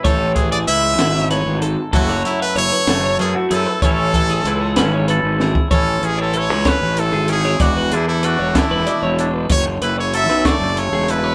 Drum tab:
HH |x-x-x-x-x-x-|x-x-x-x-x-x-|x-x-x-x-x---|x-x-x-x-x-x-|
SD |------o-----|------o-----|------o---o-|------o-----|
BD |o-o---------|o-----------|o-o--------o|o-----o-----|

HH |x-x-x-x-x-x-|x-x-x-x-x-x-|
SD |------o-----|------o-----|
BD |o-----o-----|o-----o-----|